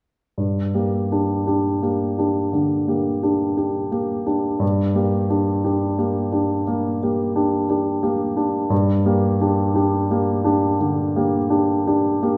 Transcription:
0.38 G2
0.75 A#3 G4
1.12 D4 G4
1.47 D4 G4
1.83 A#3 G4
2.18 D4 G4
2.53 D3
2.88 A#3 G4
3.23 D4 G4
3.57 D4 G4
3.92 A#3 G4
4.26 D4 G4
4.60 G2
4.95 A#3 G4
5.30 D4 G4
5.64 D4 G4
5.98 A#3 G4
6.32 D4 G4
6.67 A#3
7.03 A#3 G4
7.36 D4 G4
7.69 D4 G4
8.03 A#3 G4
8.37 D4 G4
8.70 G2
9.06 A#3 G4
9.41 D4 G4
9.75 D4 G4
10.11 A#3 G4
10.44 D4 G4
10.80 D3
11.16 A#3 G4
11.50 D4 G4
11.87 D4 G4
12.23 A#3 G4

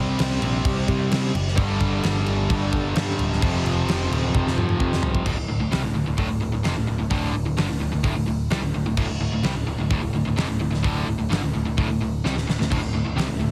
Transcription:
Already playing: C2 C3 G3 C4 G4 D5
0.19 C2, snare, crash
0.42 A#1 C3 G3 C4, crash
0.65 C2, kick, crash
0.88 C3, kick, crash
1.11 C3, snare, crash
1.35 F#1, crash
1.48 snare
1.56 G1 G2 D3 G3 D4 A4, kick, crash
1.81 G1, kick, crash
2.03 G1, snare, crash
2.26 G1, crash
2.49 G1 G2 D3 G3, kick, crash
2.73 G1, kick, crash
2.95 G2, snare, crash
3.19 D1, crash
3.33 snare
3.41 F1 F2 C3 F3 C4 G4, kick, crash
3.65 F1, crash
3.87 F1, snare, crash
4.11 D1, crash
4.33 F1 F2 C3 F3, kick, high tom
4.47 snare
4.58 F2, mid tom
4.69 mid tom
4.80 F2, kick
4.93 snare
5.03 C2, floor tom
5.15 kick
5.26 D1 D2 A2, kick, crash
5.37 D1 D2 A2
5.48 D1 D2 A2
5.60 D1 D2 A2
5.72 C2 C3 G3, snare, open hi-hat
5.83 D1 D2 A2, snare
5.95 D1 D2 A2
6.07 D1 D2 A2
6.18 D1 D2 A2, kick, open hi-hat
6.30 D1 D2 A2
6.42 D1 D2 A2
6.53 D1 D2 A2
6.64 F1 F2 C3, snare, open hi-hat
6.77 D1 D2 A2
6.88 D1 D2 A2
6.99 D1 D2 A2
7.10 D1 D2 A2 D3, kick, open hi-hat
7.33 D1 D2 A2
7.45 D1 D2 A2
7.57 G1 G2 D3, snare, open hi-hat
7.68 D1 D2 A2, snare
7.80 D1 D2 A2
7.92 D1 D2 A2
8.03 D1 D2 A2, kick, open hi-hat
8.15 D1 D2 A2
8.26 D1 D2 A2
8.50 C2 C3 G3, snare, open hi-hat
8.62 D1 D2 A2
8.74 D1 D2 A2
8.86 D1 D2 A2
8.97 D1 D2 A2, kick, crash
9.09 D1 D2 A2
9.20 D1 D2 A2
9.32 D1 D2 A2
9.43 C2 C3 G3, snare, open hi-hat
9.55 D1 D2 A2
9.67 D1 D2 A2
9.78 D1 D2 A2
9.91 D1 D2 A2, kick, open hi-hat
10.01 D1 D2 A2
10.13 D1 D2 A2
10.25 D1 D2 A2
10.36 F1 F2 C3, snare, open hi-hat
10.48 D1 D2 A2
10.60 D1 D2 A2
10.71 D1 D2 A2, snare
10.84 D1 D2 A2 D3, kick, open hi-hat
11.07 D1 D2 A2
11.19 D1 D2 A2
11.30 G1 G2 D3, snare, open hi-hat
11.42 D1 D2 A2
11.54 D1 D2 A2
11.66 D1 D2 A2
11.78 D1 D2 A2, kick, open hi-hat
11.90 D1 D2 A2
12.02 D1 D2 A2
12.25 C2 C3 G3, snare
12.37 D1 D2 A2, snare
12.48 D1 D2 A2, snare
12.59 D1 D2 A2, snare
12.70 D1 D2 A2 D4 A4 E5, kick, crash, splash
12.82 D1 D2 A2
12.93 D1 D2 A2
13.05 D1 D2 A2
13.16 C2 C3 G3, snare, open hi-hat
13.29 D1 D2 A2
13.39 D1 D2 A2

